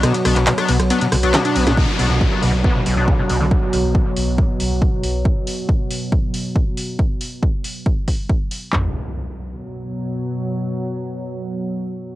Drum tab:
RD |xxxxxxxxxxxxxxxx|----------------|----------------|----------------|
HH |xxoxxxoxxxoxxxox|--o---o---o---o-|--o---o---o---o-|--o---o---o---o-|
CP |---xx-------x---|----------------|----------------|----------------|
SD |r-r--r-r--r-o--o|----------------|----------------|----------------|
FT |----------------|----------------|----------------|----------------|
BD |----------------|o---o---o---o---|o---o---o---o---|o---o---o---o---|

RD |----------------|----------------|----------------|
HH |--o---o---o---o-|----------------|----------------|
CP |----------------|x---------------|----------------|
SD |----------------|----------------|----------------|
FT |----------------|o---------------|----------------|
BD |o---o---o-o-o---|o---------------|----------------|